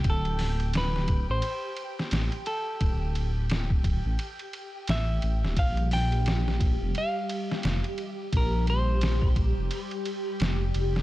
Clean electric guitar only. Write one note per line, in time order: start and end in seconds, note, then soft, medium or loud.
0.10 0.72 A4 medium
0.77 1.27 B4 loud
1.31 2.09 C5 loud
2.47 4.90 A4 medium
4.90 5.59 E5 loud
5.59 5.93 F5 loud
5.93 6.57 G5 loud
6.98 7.93 F5 loud
7.93 8.36 D#5 loud
8.37 8.69 A#4 medium
8.70 9.33 C5 medium